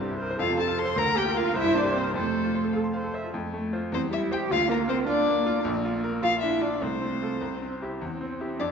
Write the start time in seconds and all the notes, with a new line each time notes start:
Already playing: C2 G2
0.01 C4 G4
0.11 E4
0.20 A#4 C5
0.31 C5
0.39 F2 F4 A4 F5
0.49 C3
0.58 C4 A4 A5
0.68 F4
0.78 A4 C5 C6
0.85 C5
0.96 D2 A#4 A#5
1.06 D3
1.16 A#3 G4 G5
1.25 F4
1.35 F4 A#4 F5
1.45 F4
1.54 C2 E4 C5 E5
1.64 G2
1.74 A#3 D4 D5
1.84 G4
1.93 C4 C5
2.04 A#4
2.14 F2 A3 A4 C5
2.23 C3
2.35 A3
2.45 F4
2.55 C5
2.64 A4
2.73 A4 F5
2.84 C6
2.93 C5 F5
3.04 A4
3.14 C5 E5
3.24 F4
3.34 F2 A3
3.54 A3
3.73 F4 C5
3.92 E2 G3 C4 C5
4.11 G3 E4 E5
4.31 G4 C5 G5
4.51 D2 A#3 F4 F5
4.69 A#3 F4 A#4
4.88 C4 A#4 C5
5.07 D4 F4 D5
5.27 A#3
5.46 F4
5.64 A#1
5.85 F4
6.04 A#4
6.22 F4 F5
6.41 D4 E4 E5
6.61 D4 F4 D5
6.82 C2 A3 C4 C5
7.02 C4
7.22 F4 A4
7.41 C2 C4
7.62 C4
7.82 E4 G4
8.01 E2
8.21 C4
8.41 E4 G4
8.59 F2 D4 D5